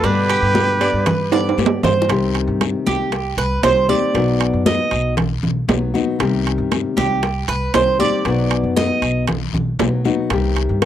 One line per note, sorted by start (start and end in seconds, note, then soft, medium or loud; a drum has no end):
0.03 0.40 G2 loud
0.03 0.80 B2 medium
0.03 0.80 D3 medium
0.03 0.80 G3 medium
0.03 0.80 B3 medium
0.03 0.29 D4 medium
0.03 1.58 G4 loud
0.03 0.79 G4 medium
0.03 1.59 B4 loud
0.03 high bongo medium
0.03 high conga soft
0.03 high timbale medium
0.03 long guiro medium
0.29 0.80 G4 medium
0.29 high bongo soft
0.29 high conga soft
0.29 high timbale medium
0.42 0.91 G2 medium
0.55 high bongo medium
0.55 high conga medium
0.55 low timbale medium
0.55 short guiro medium
0.81 1.05 D3 medium
0.81 1.05 G3 medium
0.81 1.06 B3 medium
0.81 1.06 G4 medium
0.81 1.06 D5 medium
0.81 high conga soft
0.81 high timbale medium
0.81 short guiro medium
0.93 1.55 G2 medium
1.06 1.32 B4 medium
1.06 muted nylon-string guitar stroke medium
1.06 high bongo medium
1.06 high conga soft
1.06 low conga medium
1.06 high timbale medium
1.06 long guiro medium
1.32 1.57 D3 medium
1.32 1.57 G3 medium
1.32 1.57 B3 medium
1.32 1.57 G4 medium
1.32 1.83 D5 medium
1.32 high conga soft
1.32 high timbale loud
1.49 high timbale medium
1.57 1.82 G2 medium
1.57 2.08 D3 soft
1.57 2.09 G3 soft
1.57 2.09 B3 soft
1.57 2.09 G4 medium
1.57 high bongo medium
1.57 low bongo medium
1.57 high conga medium
1.57 short guiro medium
1.66 low timbale medium
1.83 2.08 G2 medium
1.83 2.09 C5 medium
1.83 high bongo loud
1.83 low conga medium
1.83 low timbale medium
1.83 short guiro medium
2.02 low bongo medium
2.09 2.46 C2 loud
2.09 3.11 C3 medium
2.09 3.11 D#3 medium
2.09 3.12 G3 medium
2.09 3.12 C4 medium
2.09 3.12 G4 medium
2.09 high bongo medium
2.09 high conga soft
2.09 high timbale loud
2.09 long guiro medium
2.35 high conga soft
2.35 high timbale medium
2.48 2.72 G2 loud
2.61 high bongo medium
2.61 high conga medium
2.61 high timbale medium
2.61 low timbale medium
2.61 short guiro medium
2.86 3.35 C2 medium
2.86 3.34 G4 medium
2.86 high conga medium
2.86 short guiro medium
3.12 muted nylon-string guitar stroke medium
3.12 high bongo medium
3.12 high conga soft
3.12 high timbale medium
3.12 long guiro medium
3.37 3.62 C2 medium
3.37 3.63 B4 medium
3.37 high conga soft
3.37 high timbale medium
3.63 3.88 C2 loud
3.63 3.88 D#3 soft
3.63 3.89 G3 medium
3.63 3.88 C4 medium
3.63 3.88 G4 medium
3.63 3.89 C5 medium
3.63 high bongo medium
3.63 low bongo medium
3.63 high conga soft
3.63 high timbale medium
3.63 low timbale medium
3.63 short guiro medium
3.89 4.14 D#3 medium
3.89 4.14 G3 medium
3.89 4.14 C4 medium
3.89 4.14 G4 medium
3.89 4.62 D5 medium
3.89 high conga medium
3.89 short guiro medium
4.14 4.51 B1 loud
4.14 5.16 B2 medium
4.14 5.16 F#3 medium
4.14 5.17 B3 medium
4.14 5.18 D#4 medium
4.14 5.17 F#4 medium
4.14 high bongo medium
4.14 high conga soft
4.14 high timbale medium
4.14 long guiro medium
4.40 high bongo soft
4.40 high conga soft
4.40 high timbale loud
4.53 4.78 F#2 medium
4.66 5.14 D#5 loud
4.66 high bongo medium
4.66 high conga loud
4.66 low timbale medium
4.66 short guiro medium
4.91 5.41 B1 loud
4.91 high conga soft
4.91 high timbale medium
4.91 short guiro medium
5.17 muted nylon-string guitar stroke medium
5.17 high bongo medium
5.17 high conga soft
5.17 low conga medium
5.17 high timbale medium
5.17 long guiro medium
5.43 5.68 B1 medium
5.43 high bongo soft
5.43 high conga soft
5.43 low conga medium
5.68 5.93 B1 loud
5.68 5.93 F#3 medium
5.68 5.94 B3 medium
5.68 5.93 D#4 medium
5.68 5.93 F#4 medium
5.68 high bongo medium
5.68 low bongo medium
5.68 high conga medium
5.68 high timbale medium
5.68 low timbale medium
5.68 short guiro medium
5.94 6.19 F#3 medium
5.94 6.20 B3 medium
5.94 6.19 D#4 medium
5.94 6.19 F#4 medium
5.94 high bongo soft
5.94 high conga medium
5.94 short guiro medium
6.19 6.57 C2 loud
6.19 7.21 C3 medium
6.19 7.22 D#3 medium
6.19 7.22 G3 medium
6.19 7.22 C4 medium
6.19 7.22 G4 medium
6.19 high bongo medium
6.19 high conga soft
6.19 high timbale medium
6.19 long guiro medium
6.46 high conga soft
6.46 high timbale medium
6.58 6.83 G2 medium
6.71 high bongo medium
6.71 high conga medium
6.71 high timbale medium
6.71 low timbale medium
6.71 short guiro medium
6.97 7.46 C2 loud
6.97 7.45 G4 medium
6.97 high conga loud
6.97 short guiro medium
7.23 muted nylon-string guitar stroke medium
7.23 high bongo medium
7.23 high conga soft
7.23 high timbale medium
7.23 long guiro medium
7.48 7.73 C2 medium
7.48 7.74 B4 loud
7.48 high conga soft
7.48 high timbale medium
7.74 7.99 C2 medium
7.74 7.99 D#3 medium
7.74 7.99 G3 medium
7.74 7.99 C4 medium
7.74 7.98 G4 medium
7.74 7.99 C5 medium
7.74 high bongo medium
7.74 low bongo medium
7.74 high conga soft
7.74 high timbale medium
7.74 low timbale medium
7.74 short guiro medium
7.99 8.25 D#3 medium
7.99 8.25 G3 medium
7.99 8.25 C4 medium
7.99 8.24 G4 medium
7.99 8.73 D5 medium
7.99 high conga medium
7.99 short guiro medium
8.25 8.62 B1 loud
8.25 9.27 B2 medium
8.25 9.27 F#3 medium
8.25 9.28 B3 medium
8.25 9.29 D#4 medium
8.25 9.28 F#4 medium
8.25 high bongo medium
8.25 high conga soft
8.25 high timbale medium
8.25 long guiro medium
8.51 high bongo soft
8.51 high conga soft
8.51 high timbale medium
8.63 8.88 F#2 medium
8.76 9.24 D#5 loud
8.76 high bongo medium
8.76 high conga loud
8.76 low timbale medium
8.76 short guiro medium
9.02 9.51 B1 loud
9.02 high conga soft
9.02 high timbale medium
9.02 short guiro medium
9.28 muted nylon-string guitar stroke medium
9.28 high bongo medium
9.28 high conga soft
9.28 low conga medium
9.28 high timbale medium
9.28 long guiro medium
9.53 9.78 B1 medium
9.53 high bongo soft
9.53 high conga soft
9.53 low conga medium
9.79 10.04 B1 loud
9.79 10.05 F#3 medium
9.79 10.05 B3 medium
9.79 10.05 D#4 medium
9.79 10.04 F#4 medium
9.79 high bongo medium
9.79 low bongo medium
9.79 high conga medium
9.79 high timbale medium
9.79 low timbale medium
9.79 short guiro medium
10.04 10.31 F#3 medium
10.04 10.30 B3 medium
10.04 10.30 D#4 medium
10.04 10.30 F#4 medium
10.04 high bongo soft
10.04 high conga medium
10.04 short guiro medium
10.30 10.67 C2 loud
10.30 10.85 C3 medium
10.30 10.85 D#3 medium
10.30 10.85 G3 medium
10.30 10.85 C4 medium
10.30 10.85 G4 medium
10.30 high bongo medium
10.30 high conga soft
10.30 high timbale medium
10.30 long guiro medium
10.56 high conga soft
10.56 high timbale medium
10.69 10.85 G2 loud
10.82 high bongo medium
10.82 high timbale medium
10.82 low timbale medium
10.82 short guiro medium